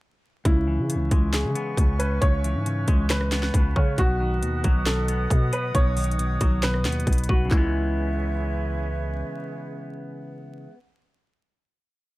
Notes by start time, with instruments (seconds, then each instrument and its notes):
0.45 808-style bass C#2, clean electric guitar C#3, felt piano E4, flute section B4 E5 G#5 C#6, kick, closed hi-hat
0.67 clean electric guitar E3
0.78 808-style bass C#3
0.89 clean electric guitar C#3, closed hi-hat
0.95 808-style bass C#2
1.11 808-style bass C#2, clean electric guitar G#3, kick, closed hi-hat
1.33 clean electric guitar C#3, felt piano G#4, finger snap, snare, closed hi-hat
1.44 808-style bass C#3
1.55 clean electric guitar B3, closed hi-hat
1.77 808-style bass C#2, clean electric guitar C#3, kick, closed hi-hat
1.99 clean electric guitar C#4, felt piano B4, closed hi-hat
2.21 808-style bass C#2, clean electric guitar C#3, felt piano C#5, kick, closed hi-hat
2.44 clean electric guitar E3, closed hi-hat
2.55 808-style bass G#2
2.66 clean electric guitar C#3, closed hi-hat
2.88 808-style bass C#2, clean electric guitar G#3, kick, closed hi-hat
3.10 clean electric guitar C#3, felt piano B4, finger snap, snare, closed hi-hat
3.21 cross-stick
3.32 clean electric guitar B3, finger snap, snare, closed hi-hat
3.43 snare
3.54 808-style bass C#2, clean electric guitar C#3, kick, closed hi-hat
3.76 808-style bass C#3, clean electric guitar C#4, felt piano C#5, kick
3.98 808-style bass B1, clean electric guitar B2, felt piano F#4, flute section D#5 F#5 D#6, kick, closed hi-hat
4.20 clean electric guitar D#3
4.42 808-style bass D#2, clean electric guitar B2, closed hi-hat
4.64 808-style bass B1, clean electric guitar F#3, kick, closed hi-hat
4.86 clean electric guitar B2, felt piano A4, finger snap, snare, closed hi-hat
5.08 clean electric guitar B3, closed hi-hat
5.30 808-style bass B2, clean electric guitar B2, kick, closed hi-hat
5.53 clean electric guitar B4, felt piano B4, closed hi-hat
5.75 808-style bass B1, clean electric guitar B2, felt piano C#5, kick, closed hi-hat
5.97 clean electric guitar D#3, closed hi-hat, open hi-hat
6.04 closed hi-hat
6.11 closed hi-hat
6.19 clean electric guitar B2, closed hi-hat
6.41 808-style bass B1, clean electric guitar F#3, kick, cross-stick, closed hi-hat
6.63 clean electric guitar B2, felt piano B4, finger snap, snare, closed hi-hat
6.74 cross-stick
6.85 808-style bass D#2, clean electric guitar B3, finger snap, snare, closed hi-hat
6.92 closed hi-hat
7.00 closed hi-hat
7.07 808-style bass B1, clean electric guitar B2, kick, closed hi-hat
7.13 closed hi-hat
7.18 closed hi-hat
7.24 closed hi-hat
7.29 808-style bass B1, felt piano F#4, clean electric guitar B4, kick
7.45 clean electric guitar C#3
7.49 808-style bass C#2, clean electric guitar E3 G#3, flute section C#4 G#4 B4 E5, felt piano E4, kick, clap
7.57 clean electric guitar B3